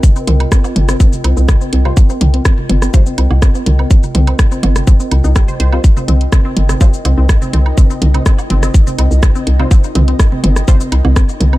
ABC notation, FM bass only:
X:1
M:4/4
L:1/16
Q:1/4=124
K:Cm
V:1 name="FM bass" clef=bass
z2 C,,2 z2 G,,,2 z2 C,, C,,2 z C,,2 | z2 C,,2 z2 G,,,2 z2 C,, C,,2 z C,,2 | z2 C,,2 z2 G,,,2 z2 C,, C,,2 z C,,2 | z2 C,,2 z2 G,,,2 z2 C,, C,,2 z C,,2 |
z2 C,,2 z2 G,,,2 z2 C,, C,,2 z C,,2 | z2 C,,2 z2 G,,,2 z2 C,, C,,2 z C,,2 |]